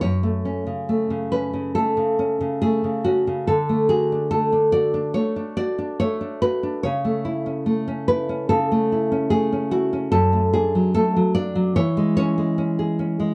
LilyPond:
\new Staff \with { instrumentName = "Nylon-string guitar" } { \time 4/4 \key d \lydian \tempo 4 = 72 << { cis''4. b'8 a'4 gis'8 fis'8 | a'8 gis'8 a'8 d''8 cis''8 d''8 cis''8 b'8 | cis''4. b'8 a'4 gis'8 fis'8 | a'8 gis'8 a'8 d''8 cis''8 cis''4. | } \\ { fis,16 a16 cis'16 cis16 a16 cis16 cis'16 cis16 a16 cis16 cis'16 cis16 a16 cis16 cis'16 cis16 | d16 a16 fis'16 d'16 a16 d'16 fis'16 d'16 a16 d'16 fis'16 d'16 a16 d'16 fis'16 d'16 | cis16 a16 e'16 cis'16 a16 cis'16 e'16 cis'16 cis16 a16 e'16 cis'16 a16 cis'16 e'16 cis'16 | fis,16 a16 d'16 fis16 a16 fis16 d'16 fis16 e16 gis16 cis'16 gis16 cis'16 gis'16 cis'16 gis16 | } >> }